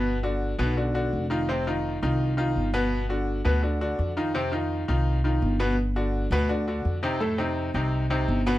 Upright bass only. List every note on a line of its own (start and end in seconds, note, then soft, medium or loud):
0.00 0.53 G1 medium
0.59 1.09 B1 loud
1.13 1.97 F1 medium
2.03 2.52 C2 loud
2.56 3.40 G1 medium
3.45 3.95 D2 loud
3.99 4.83 F2 medium
4.89 5.39 C2 medium
5.42 6.26 G1 medium
6.31 6.81 D2 loud
6.85 7.69 F2 medium
7.74 8.24 C2 medium
8.28 8.59 G1 medium